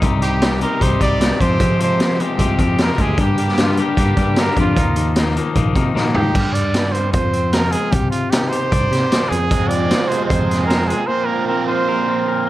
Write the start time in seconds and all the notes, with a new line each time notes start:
0.02 C2 C3 G3 C4 D#4 G4, kick, closed hi-hat
0.21 C3 G3 C4 D#4 G4, closed hi-hat
0.41 C3 G3 C4 D#4 G4, snare, closed hi-hat
0.61 C3 G3 C4 D#4 G4 A#4, closed hi-hat
0.80 C2 C3 G3 C4 D#4 G4 C5, kick, closed hi-hat
1.00 C2 C3 G3 C4 D#4 G4 D5, kick, closed hi-hat
1.19 C3 G3 C4 D#4 G4, snare, closed hi-hat
1.40 F2 C3 F3 G#3 C4 G4 C5, kick, closed hi-hat
1.59 F2 C3 F3 G#3 C4 G4, kick, closed hi-hat
1.79 F2 C3 F3 G#3 C4 G4, closed hi-hat
1.83 C5
2.00 F2 C3 F3 G#3 C4 G4, snare, closed hi-hat
2.19 F2 C3 F3 G#3 C4 G4, closed hi-hat
2.38 C2 F2 C3 F3 G#3 C4 G4, kick, closed hi-hat
2.58 F2 C3 F3 G#3 C4 G4, kick, closed hi-hat
2.78 F2 C3 F3 G#3 C4 G4, snare, closed hi-hat
2.83 A#4
2.98 D2 F2 C3 F3 G#3 C4 G4 G#4, kick, closed hi-hat
3.17 G2 D3 G3 A#3 D4 G4, kick, closed hi-hat
3.22 G4
3.38 G2 D3 G3 A#3 D4 G4, closed hi-hat
3.48 snare
3.57 G2 D3 G3 A#3 D4 F4 G4, snare, closed hi-hat
3.77 G2 D3 G3 A#3 D4 G4, closed hi-hat
3.97 G2 D3 G3 A#3 D4 G4, kick, closed hi-hat
4.17 G2 D3 G3 A#3 D4 G4, kick, closed hi-hat
4.36 G2 D3 G3 A#3 D4 G4 A#4, snare, closed hi-hat
4.57 F2 G2 D3 G3 A#3 D4 G4, kick, closed hi-hat
4.61 F4
4.77 D#2 D#3 F3 A#3 D#4, kick, closed hi-hat
4.96 D#3 F3 A#3 D#4, closed hi-hat
5.16 D#3 F3 A#3 D#4, snare, closed hi-hat
5.36 D#3 F3 A#3 D#4, closed hi-hat
5.55 A#1 D#3 F3 A#3 D#4, kick, closed hi-hat
5.75 C3 D#3 F3 A#3 D#4, kick, closed hi-hat
5.95 A#2 D#3 F3 A#3 D#4, snare
6.15 G#2 D#3 F3 A#3 D#4 G4, floor tom
6.35 G2, kick, crash
6.54 D5, closed hi-hat
6.74 G3, snare, closed hi-hat
6.92 C4 C5, closed hi-hat
7.13 F2 F3 C5, kick, closed hi-hat
7.33 C4, closed hi-hat
7.53 F4 A#4, snare, closed hi-hat
7.72 G#3 G#4, closed hi-hat
7.92 C2 C3 G4, kick, closed hi-hat
8.11 F4, closed hi-hat
8.30 D#4 G4, snare, closed hi-hat
8.49 G4 C5, closed hi-hat
8.72 C2 D5, kick, closed hi-hat
8.91 C3 G4, snare, closed hi-hat
9.11 D5, snare, closed hi-hat
9.29 F2 F3 G#4, closed hi-hat
9.50 F2 C3 F3 G#3 C4, kick, closed hi-hat
9.68 D5, closed hi-hat
9.91 F4, snare, closed hi-hat
10.08 G#4 C5, closed hi-hat
10.26 C5
10.30 F2 C5, kick, closed hi-hat
10.50 G#4, snare, closed hi-hat
10.67 A#4 C5, closed hi-hat
10.71 snare
10.88 F4 G#4, closed hi-hat
11.07 A#2 F3 A#3 C4 C5
11.25 A#4
11.47 C4 A#4
11.67 F4 C5
11.88 A#4
12.08 F4
12.28 A#4